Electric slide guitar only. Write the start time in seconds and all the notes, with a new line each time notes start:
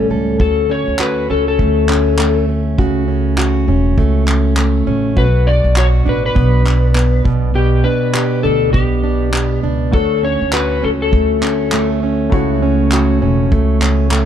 0.41 A4
0.71 C#5
1.01 B4
1.31 A4
1.48 A4
5.18 B4
5.47 D5
5.78 C#5
6.09 B4
6.26 B4
7.55 G4
7.84 B4
8.43 A4
8.73 G4
9.94 A4
10.25 C#5
10.53 B4
10.84 A4
11.02 A4